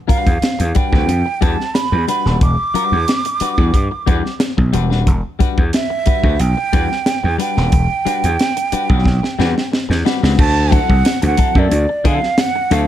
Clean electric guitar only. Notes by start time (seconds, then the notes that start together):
0.08 G3 D4 F#4 B4
0.41 muted clean electric guitar stroke
0.59 muted clean electric guitar stroke
0.75 G3 D4 F#4 B4
0.92 G3 D4 F#4 B4
1.26 muted clean electric guitar stroke
1.41 G3 D4 F#4 B4
1.59 muted clean electric guitar stroke
1.74 muted clean electric guitar stroke
1.92 muted clean electric guitar stroke
2.08 G3 D4 F#4 B4
2.25 G3 D4 F#4 B4
2.74 G3 D4 F#4 B4
3.08 muted clean electric guitar stroke
3.26 muted clean electric guitar stroke
3.41 G3 D4 F#4 B4
3.58 G3 D4 F#4 B4
3.91 muted clean electric guitar stroke
4.07 G3 D4 F#4 B4
4.24 muted clean electric guitar stroke
4.39 muted clean electric guitar stroke
4.57 muted clean electric guitar stroke
4.73 G3 D4 F#4 B4
4.90 G3 D4 F#4 B4
5.39 G3 D4 F#4 B4
5.73 muted clean electric guitar stroke
5.90 muted clean electric guitar stroke
6.06 G3 D4 F#4 B4
6.24 G3 D4 F#4 B4
6.57 muted clean electric guitar stroke
6.73 G3 D4 F#4 B4
6.91 muted clean electric guitar stroke
7.06 muted clean electric guitar stroke
7.24 muted clean electric guitar stroke
7.38 G3 D4 F#4 B4
7.57 G3 D4 F#4 B4
8.05 G3 D4 F#4 B4
8.39 muted clean electric guitar stroke
8.57 muted clean electric guitar stroke
8.72 G3 D4 F#4 B4
8.90 G3 D4 F#4 B4
9.23 muted clean electric guitar stroke
9.39 G3 D4 F#4 B4
9.56 muted clean electric guitar stroke
9.72 muted clean electric guitar stroke
9.89 muted clean electric guitar stroke
10.05 G3 D4 F#4 B4
10.23 G3 D4 F#4 B4
10.71 F#3 C4 E4 A4
11.04 muted clean electric guitar stroke
11.22 muted clean electric guitar stroke
11.37 F#3 C4 E4 A4
11.56 F#3 C4 E4 A4
11.89 muted clean electric guitar stroke
12.04 F#3 C4 E4 A4
12.22 muted clean electric guitar stroke
12.38 muted clean electric guitar stroke
12.56 muted clean electric guitar stroke
12.71 F#3 C4 E4 A4